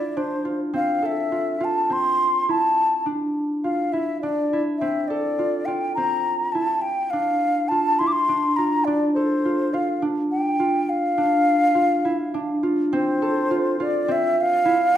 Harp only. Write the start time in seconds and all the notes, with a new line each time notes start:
Already playing: C4 D4 E4
0.17 D4
0.45 F4
0.73 C4
1.02 A4
1.32 F4
1.60 F4
1.90 C4
2.49 E4
3.06 D4
3.64 F4
3.93 E4
4.23 D4
4.53 E4
4.81 C4
5.10 A4
5.39 F4
5.68 F4
5.97 C4
6.55 E4
7.13 D4
7.71 F4
8.00 E4
8.29 D4
8.58 F4
8.87 D4
9.16 A4
9.45 F4
9.74 F4
10.02 D4
10.60 F4
11.18 D4
11.75 F4
12.05 E4
12.34 D4
12.63 F4
12.93 C4
13.22 A4
13.51 F4
13.80 F4
14.08 C4
14.65 E4